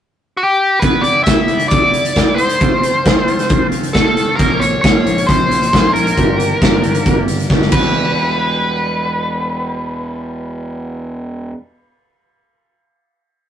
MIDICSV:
0, 0, Header, 1, 5, 480
1, 0, Start_track
1, 0, Tempo, 446429
1, 883, Time_signature, 4, 2, 24, 8
1, 5680, Tempo, 442804
1, 14578, End_track
2, 0, Start_track
2, 0, Title_t, "Lead electric guitar"
2, 0, Program_c, 0, 29
2, 400, Note_on_c, 0, 67, 67
2, 855, Note_on_c, 0, 71, 92
2, 896, Note_off_c, 0, 67, 0
2, 1091, Note_off_c, 0, 71, 0
2, 1091, Note_on_c, 0, 74, 78
2, 1324, Note_off_c, 0, 74, 0
2, 1329, Note_on_c, 0, 76, 79
2, 1804, Note_off_c, 0, 76, 0
2, 1808, Note_on_c, 0, 74, 85
2, 2522, Note_on_c, 0, 72, 79
2, 2570, Note_off_c, 0, 74, 0
2, 3942, Note_off_c, 0, 72, 0
2, 4229, Note_on_c, 0, 69, 67
2, 4686, Note_off_c, 0, 69, 0
2, 4691, Note_on_c, 0, 70, 89
2, 4942, Note_on_c, 0, 73, 81
2, 4955, Note_off_c, 0, 70, 0
2, 5163, Note_off_c, 0, 73, 0
2, 5176, Note_on_c, 0, 73, 81
2, 5662, Note_on_c, 0, 72, 97
2, 5683, Note_off_c, 0, 73, 0
2, 6382, Note_off_c, 0, 72, 0
2, 6387, Note_on_c, 0, 70, 79
2, 7793, Note_off_c, 0, 70, 0
2, 8326, Note_on_c, 0, 71, 85
2, 12424, Note_off_c, 0, 71, 0
2, 14578, End_track
3, 0, Start_track
3, 0, Title_t, "Clean electric guitar"
3, 0, Program_c, 1, 27
3, 874, Note_on_c, 1, 52, 80
3, 889, Note_on_c, 1, 55, 72
3, 897, Note_on_c, 1, 59, 86
3, 904, Note_on_c, 1, 64, 90
3, 1344, Note_off_c, 1, 52, 0
3, 1357, Note_off_c, 1, 55, 0
3, 1357, Note_on_c, 1, 52, 59
3, 1367, Note_off_c, 1, 59, 0
3, 1370, Note_on_c, 1, 55, 76
3, 1379, Note_off_c, 1, 64, 0
3, 1380, Note_on_c, 1, 59, 75
3, 1391, Note_on_c, 1, 64, 85
3, 1595, Note_off_c, 1, 64, 0
3, 1608, Note_on_c, 1, 64, 51
3, 1613, Note_off_c, 1, 59, 0
3, 1624, Note_off_c, 1, 55, 0
3, 1626, Note_on_c, 1, 59, 57
3, 1637, Note_on_c, 1, 55, 55
3, 1823, Note_off_c, 1, 52, 0
3, 1836, Note_off_c, 1, 55, 0
3, 1836, Note_on_c, 1, 52, 52
3, 1845, Note_off_c, 1, 59, 0
3, 1849, Note_on_c, 1, 55, 59
3, 1855, Note_off_c, 1, 64, 0
3, 1858, Note_on_c, 1, 59, 57
3, 1868, Note_on_c, 1, 64, 55
3, 2302, Note_off_c, 1, 52, 0
3, 2315, Note_on_c, 1, 52, 61
3, 2317, Note_off_c, 1, 55, 0
3, 2327, Note_off_c, 1, 59, 0
3, 2330, Note_on_c, 1, 55, 68
3, 2338, Note_off_c, 1, 64, 0
3, 2340, Note_on_c, 1, 59, 64
3, 2351, Note_on_c, 1, 64, 73
3, 2537, Note_off_c, 1, 64, 0
3, 2550, Note_on_c, 1, 64, 61
3, 2554, Note_off_c, 1, 59, 0
3, 2565, Note_off_c, 1, 55, 0
3, 2567, Note_on_c, 1, 59, 68
3, 2577, Note_on_c, 1, 55, 59
3, 2784, Note_off_c, 1, 64, 0
3, 2784, Note_on_c, 1, 41, 74
3, 2787, Note_off_c, 1, 52, 0
3, 2790, Note_on_c, 1, 48, 75
3, 2793, Note_off_c, 1, 59, 0
3, 2798, Note_off_c, 1, 55, 0
3, 2805, Note_on_c, 1, 53, 77
3, 2808, Note_on_c, 1, 57, 81
3, 2813, Note_on_c, 1, 60, 88
3, 2820, Note_on_c, 1, 65, 82
3, 3255, Note_off_c, 1, 41, 0
3, 3258, Note_off_c, 1, 48, 0
3, 3268, Note_on_c, 1, 41, 67
3, 3270, Note_on_c, 1, 48, 64
3, 3273, Note_off_c, 1, 57, 0
3, 3276, Note_off_c, 1, 53, 0
3, 3279, Note_off_c, 1, 60, 0
3, 3280, Note_on_c, 1, 53, 78
3, 3286, Note_on_c, 1, 57, 72
3, 3292, Note_on_c, 1, 60, 81
3, 3293, Note_off_c, 1, 65, 0
3, 3297, Note_on_c, 1, 65, 77
3, 3507, Note_off_c, 1, 65, 0
3, 3511, Note_off_c, 1, 60, 0
3, 3512, Note_on_c, 1, 65, 57
3, 3518, Note_off_c, 1, 57, 0
3, 3524, Note_on_c, 1, 60, 52
3, 3531, Note_on_c, 1, 57, 58
3, 3538, Note_off_c, 1, 53, 0
3, 3542, Note_on_c, 1, 53, 45
3, 3737, Note_off_c, 1, 53, 0
3, 3749, Note_off_c, 1, 57, 0
3, 3750, Note_on_c, 1, 53, 59
3, 3757, Note_off_c, 1, 41, 0
3, 3759, Note_off_c, 1, 48, 0
3, 3762, Note_on_c, 1, 57, 60
3, 3763, Note_off_c, 1, 60, 0
3, 3773, Note_off_c, 1, 65, 0
3, 3776, Note_on_c, 1, 60, 59
3, 3785, Note_on_c, 1, 65, 68
3, 4227, Note_off_c, 1, 53, 0
3, 4239, Note_off_c, 1, 57, 0
3, 4240, Note_on_c, 1, 53, 63
3, 4249, Note_off_c, 1, 60, 0
3, 4252, Note_on_c, 1, 57, 75
3, 4259, Note_off_c, 1, 65, 0
3, 4261, Note_on_c, 1, 60, 65
3, 4272, Note_on_c, 1, 65, 71
3, 4471, Note_off_c, 1, 65, 0
3, 4483, Note_off_c, 1, 60, 0
3, 4484, Note_on_c, 1, 65, 71
3, 4494, Note_off_c, 1, 57, 0
3, 4496, Note_on_c, 1, 60, 57
3, 4504, Note_off_c, 1, 53, 0
3, 4507, Note_on_c, 1, 57, 65
3, 4516, Note_on_c, 1, 53, 52
3, 4710, Note_off_c, 1, 65, 0
3, 4716, Note_off_c, 1, 60, 0
3, 4719, Note_off_c, 1, 53, 0
3, 4720, Note_on_c, 1, 46, 83
3, 4722, Note_off_c, 1, 57, 0
3, 4732, Note_on_c, 1, 53, 72
3, 4739, Note_on_c, 1, 58, 80
3, 4743, Note_on_c, 1, 61, 88
3, 4750, Note_on_c, 1, 65, 90
3, 5192, Note_off_c, 1, 46, 0
3, 5205, Note_off_c, 1, 53, 0
3, 5205, Note_on_c, 1, 46, 78
3, 5218, Note_off_c, 1, 61, 0
3, 5218, Note_on_c, 1, 53, 65
3, 5219, Note_off_c, 1, 58, 0
3, 5223, Note_on_c, 1, 58, 69
3, 5225, Note_off_c, 1, 65, 0
3, 5231, Note_on_c, 1, 61, 75
3, 5238, Note_on_c, 1, 65, 80
3, 5421, Note_off_c, 1, 65, 0
3, 5434, Note_on_c, 1, 65, 69
3, 5441, Note_off_c, 1, 61, 0
3, 5454, Note_on_c, 1, 61, 62
3, 5469, Note_off_c, 1, 58, 0
3, 5473, Note_on_c, 1, 58, 51
3, 5655, Note_off_c, 1, 53, 0
3, 5667, Note_off_c, 1, 58, 0
3, 5668, Note_on_c, 1, 53, 54
3, 5680, Note_on_c, 1, 58, 59
3, 5683, Note_off_c, 1, 46, 0
3, 5684, Note_off_c, 1, 61, 0
3, 5690, Note_off_c, 1, 65, 0
3, 5697, Note_on_c, 1, 61, 58
3, 5703, Note_on_c, 1, 65, 61
3, 6134, Note_off_c, 1, 53, 0
3, 6144, Note_off_c, 1, 58, 0
3, 6147, Note_on_c, 1, 53, 64
3, 6157, Note_on_c, 1, 58, 59
3, 6161, Note_off_c, 1, 61, 0
3, 6170, Note_off_c, 1, 65, 0
3, 6174, Note_on_c, 1, 61, 70
3, 6183, Note_on_c, 1, 65, 71
3, 6367, Note_off_c, 1, 65, 0
3, 6380, Note_on_c, 1, 65, 72
3, 6390, Note_off_c, 1, 61, 0
3, 6403, Note_off_c, 1, 58, 0
3, 6403, Note_on_c, 1, 61, 67
3, 6416, Note_on_c, 1, 58, 54
3, 6618, Note_off_c, 1, 65, 0
3, 6622, Note_off_c, 1, 53, 0
3, 6628, Note_on_c, 1, 43, 70
3, 6630, Note_off_c, 1, 61, 0
3, 6636, Note_off_c, 1, 58, 0
3, 6638, Note_on_c, 1, 50, 78
3, 6641, Note_on_c, 1, 55, 80
3, 6651, Note_on_c, 1, 58, 83
3, 6658, Note_on_c, 1, 62, 81
3, 6664, Note_on_c, 1, 67, 87
3, 7100, Note_off_c, 1, 43, 0
3, 7104, Note_off_c, 1, 50, 0
3, 7113, Note_on_c, 1, 43, 67
3, 7115, Note_off_c, 1, 55, 0
3, 7117, Note_on_c, 1, 50, 78
3, 7119, Note_off_c, 1, 58, 0
3, 7127, Note_off_c, 1, 62, 0
3, 7128, Note_on_c, 1, 55, 72
3, 7132, Note_on_c, 1, 58, 74
3, 7136, Note_off_c, 1, 67, 0
3, 7140, Note_on_c, 1, 62, 73
3, 7149, Note_on_c, 1, 67, 81
3, 7338, Note_off_c, 1, 67, 0
3, 7351, Note_on_c, 1, 67, 55
3, 7354, Note_off_c, 1, 62, 0
3, 7364, Note_off_c, 1, 58, 0
3, 7367, Note_on_c, 1, 62, 61
3, 7373, Note_off_c, 1, 55, 0
3, 7377, Note_on_c, 1, 58, 57
3, 7386, Note_on_c, 1, 55, 51
3, 7581, Note_off_c, 1, 55, 0
3, 7594, Note_on_c, 1, 55, 58
3, 7595, Note_off_c, 1, 58, 0
3, 7599, Note_off_c, 1, 43, 0
3, 7601, Note_off_c, 1, 50, 0
3, 7608, Note_on_c, 1, 58, 58
3, 7612, Note_off_c, 1, 62, 0
3, 7618, Note_off_c, 1, 67, 0
3, 7625, Note_on_c, 1, 62, 59
3, 7631, Note_on_c, 1, 67, 56
3, 8063, Note_off_c, 1, 55, 0
3, 8076, Note_on_c, 1, 55, 63
3, 8078, Note_off_c, 1, 58, 0
3, 8086, Note_off_c, 1, 62, 0
3, 8091, Note_on_c, 1, 58, 66
3, 8095, Note_off_c, 1, 67, 0
3, 8099, Note_on_c, 1, 62, 66
3, 8108, Note_on_c, 1, 67, 72
3, 8319, Note_on_c, 1, 40, 94
3, 8320, Note_off_c, 1, 55, 0
3, 8327, Note_off_c, 1, 58, 0
3, 8331, Note_off_c, 1, 62, 0
3, 8331, Note_on_c, 1, 47, 89
3, 8336, Note_off_c, 1, 67, 0
3, 8341, Note_on_c, 1, 52, 86
3, 8347, Note_on_c, 1, 55, 102
3, 8355, Note_on_c, 1, 64, 95
3, 8356, Note_on_c, 1, 67, 94
3, 12460, Note_off_c, 1, 40, 0
3, 12472, Note_off_c, 1, 47, 0
3, 12483, Note_off_c, 1, 52, 0
3, 12488, Note_off_c, 1, 55, 0
3, 12497, Note_off_c, 1, 64, 0
3, 12498, Note_off_c, 1, 67, 0
3, 14578, End_track
4, 0, Start_track
4, 0, Title_t, "Picked electric bass"
4, 0, Program_c, 2, 34
4, 4722, Note_on_c, 2, 34, 85
4, 5096, Note_off_c, 2, 34, 0
4, 5205, Note_on_c, 2, 34, 74
4, 5391, Note_off_c, 2, 34, 0
4, 5443, Note_on_c, 2, 34, 74
4, 5629, Note_off_c, 2, 34, 0
4, 5684, Note_on_c, 2, 34, 72
4, 5870, Note_off_c, 2, 34, 0
4, 5931, Note_on_c, 2, 34, 72
4, 6115, Note_off_c, 2, 34, 0
4, 6170, Note_on_c, 2, 34, 83
4, 6354, Note_off_c, 2, 34, 0
4, 6408, Note_on_c, 2, 34, 77
4, 6593, Note_off_c, 2, 34, 0
4, 6651, Note_on_c, 2, 31, 75
4, 7022, Note_off_c, 2, 31, 0
4, 7127, Note_on_c, 2, 31, 70
4, 7313, Note_off_c, 2, 31, 0
4, 7361, Note_on_c, 2, 31, 67
4, 7549, Note_off_c, 2, 31, 0
4, 7608, Note_on_c, 2, 31, 73
4, 7793, Note_off_c, 2, 31, 0
4, 7842, Note_on_c, 2, 31, 64
4, 8029, Note_off_c, 2, 31, 0
4, 8083, Note_on_c, 2, 31, 78
4, 8270, Note_off_c, 2, 31, 0
4, 8324, Note_on_c, 2, 28, 86
4, 12422, Note_off_c, 2, 28, 0
4, 14578, End_track
5, 0, Start_track
5, 0, Title_t, "Drums"
5, 881, Note_on_c, 9, 42, 48
5, 885, Note_on_c, 9, 36, 88
5, 988, Note_off_c, 9, 42, 0
5, 993, Note_off_c, 9, 36, 0
5, 1117, Note_on_c, 9, 42, 54
5, 1225, Note_off_c, 9, 42, 0
5, 1358, Note_on_c, 9, 42, 52
5, 1363, Note_on_c, 9, 36, 92
5, 1368, Note_on_c, 9, 38, 86
5, 1465, Note_off_c, 9, 42, 0
5, 1471, Note_off_c, 9, 36, 0
5, 1476, Note_off_c, 9, 38, 0
5, 1594, Note_on_c, 9, 42, 49
5, 1701, Note_off_c, 9, 42, 0
5, 1716, Note_on_c, 9, 42, 50
5, 1823, Note_off_c, 9, 42, 0
5, 1835, Note_on_c, 9, 42, 55
5, 1844, Note_on_c, 9, 36, 88
5, 1943, Note_off_c, 9, 42, 0
5, 1951, Note_off_c, 9, 36, 0
5, 2083, Note_on_c, 9, 42, 53
5, 2190, Note_off_c, 9, 42, 0
5, 2203, Note_on_c, 9, 42, 53
5, 2310, Note_off_c, 9, 42, 0
5, 2318, Note_on_c, 9, 42, 44
5, 2325, Note_on_c, 9, 36, 71
5, 2329, Note_on_c, 9, 38, 77
5, 2426, Note_off_c, 9, 42, 0
5, 2433, Note_off_c, 9, 36, 0
5, 2437, Note_off_c, 9, 38, 0
5, 2563, Note_on_c, 9, 42, 59
5, 2670, Note_off_c, 9, 42, 0
5, 2682, Note_on_c, 9, 42, 59
5, 2789, Note_off_c, 9, 42, 0
5, 2802, Note_on_c, 9, 42, 46
5, 2807, Note_on_c, 9, 36, 86
5, 2910, Note_off_c, 9, 42, 0
5, 2915, Note_off_c, 9, 36, 0
5, 3046, Note_on_c, 9, 42, 60
5, 3154, Note_off_c, 9, 42, 0
5, 3284, Note_on_c, 9, 42, 50
5, 3287, Note_on_c, 9, 36, 89
5, 3295, Note_on_c, 9, 38, 104
5, 3391, Note_off_c, 9, 42, 0
5, 3394, Note_off_c, 9, 36, 0
5, 3402, Note_off_c, 9, 38, 0
5, 3526, Note_on_c, 9, 42, 51
5, 3634, Note_off_c, 9, 42, 0
5, 3645, Note_on_c, 9, 42, 53
5, 3656, Note_on_c, 9, 38, 28
5, 3752, Note_off_c, 9, 42, 0
5, 3755, Note_on_c, 9, 42, 55
5, 3763, Note_off_c, 9, 38, 0
5, 3765, Note_on_c, 9, 36, 103
5, 3862, Note_off_c, 9, 42, 0
5, 3872, Note_off_c, 9, 36, 0
5, 3998, Note_on_c, 9, 42, 52
5, 4106, Note_off_c, 9, 42, 0
5, 4122, Note_on_c, 9, 42, 47
5, 4230, Note_off_c, 9, 42, 0
5, 4239, Note_on_c, 9, 42, 46
5, 4245, Note_on_c, 9, 36, 80
5, 4250, Note_on_c, 9, 38, 78
5, 4347, Note_off_c, 9, 42, 0
5, 4352, Note_off_c, 9, 36, 0
5, 4357, Note_off_c, 9, 38, 0
5, 4483, Note_on_c, 9, 42, 50
5, 4591, Note_off_c, 9, 42, 0
5, 4720, Note_on_c, 9, 42, 53
5, 4725, Note_on_c, 9, 36, 95
5, 4828, Note_off_c, 9, 42, 0
5, 4832, Note_off_c, 9, 36, 0
5, 4963, Note_on_c, 9, 42, 55
5, 5071, Note_off_c, 9, 42, 0
5, 5204, Note_on_c, 9, 36, 97
5, 5204, Note_on_c, 9, 42, 57
5, 5214, Note_on_c, 9, 38, 99
5, 5311, Note_off_c, 9, 42, 0
5, 5312, Note_off_c, 9, 36, 0
5, 5322, Note_off_c, 9, 38, 0
5, 5448, Note_on_c, 9, 42, 55
5, 5556, Note_off_c, 9, 42, 0
5, 5571, Note_on_c, 9, 42, 54
5, 5678, Note_off_c, 9, 42, 0
5, 5686, Note_on_c, 9, 36, 99
5, 5693, Note_on_c, 9, 42, 57
5, 5794, Note_off_c, 9, 36, 0
5, 5802, Note_off_c, 9, 42, 0
5, 5931, Note_on_c, 9, 42, 63
5, 6040, Note_off_c, 9, 42, 0
5, 6054, Note_on_c, 9, 42, 49
5, 6163, Note_off_c, 9, 42, 0
5, 6168, Note_on_c, 9, 36, 88
5, 6174, Note_on_c, 9, 42, 48
5, 6185, Note_on_c, 9, 38, 80
5, 6277, Note_off_c, 9, 36, 0
5, 6283, Note_off_c, 9, 42, 0
5, 6294, Note_off_c, 9, 38, 0
5, 6412, Note_on_c, 9, 42, 54
5, 6520, Note_off_c, 9, 42, 0
5, 6533, Note_on_c, 9, 42, 61
5, 6641, Note_off_c, 9, 42, 0
5, 6647, Note_on_c, 9, 42, 60
5, 6648, Note_on_c, 9, 36, 80
5, 6755, Note_off_c, 9, 42, 0
5, 6756, Note_off_c, 9, 36, 0
5, 6890, Note_on_c, 9, 42, 61
5, 6998, Note_off_c, 9, 42, 0
5, 7127, Note_on_c, 9, 36, 101
5, 7130, Note_on_c, 9, 42, 49
5, 7141, Note_on_c, 9, 38, 105
5, 7235, Note_off_c, 9, 36, 0
5, 7238, Note_off_c, 9, 42, 0
5, 7249, Note_off_c, 9, 38, 0
5, 7364, Note_on_c, 9, 42, 55
5, 7473, Note_off_c, 9, 42, 0
5, 7484, Note_on_c, 9, 42, 53
5, 7592, Note_off_c, 9, 42, 0
5, 7605, Note_on_c, 9, 42, 52
5, 7606, Note_on_c, 9, 36, 91
5, 7713, Note_off_c, 9, 42, 0
5, 7714, Note_off_c, 9, 36, 0
5, 7845, Note_on_c, 9, 42, 60
5, 7953, Note_off_c, 9, 42, 0
5, 7968, Note_on_c, 9, 42, 44
5, 8076, Note_off_c, 9, 42, 0
5, 8084, Note_on_c, 9, 36, 85
5, 8093, Note_on_c, 9, 38, 45
5, 8192, Note_off_c, 9, 36, 0
5, 8201, Note_off_c, 9, 38, 0
5, 8212, Note_on_c, 9, 38, 45
5, 8319, Note_on_c, 9, 49, 76
5, 8320, Note_off_c, 9, 38, 0
5, 8323, Note_on_c, 9, 36, 95
5, 8428, Note_off_c, 9, 49, 0
5, 8431, Note_off_c, 9, 36, 0
5, 14578, End_track
0, 0, End_of_file